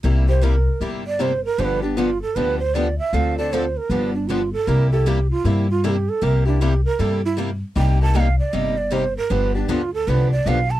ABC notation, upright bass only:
X:1
M:4/4
L:1/8
Q:"Swing" 1/4=155
K:C
V:1 name="Upright bass" clef=bass
C,,4 G,,,4 | G,,,4 D,,4 | D,,4 G,,,4 | C,,4 G,,4 |
C,,4 G,,4 | C,,4 G,,,4 | G,,,2 D,,2 C,,2 B,,,2 |]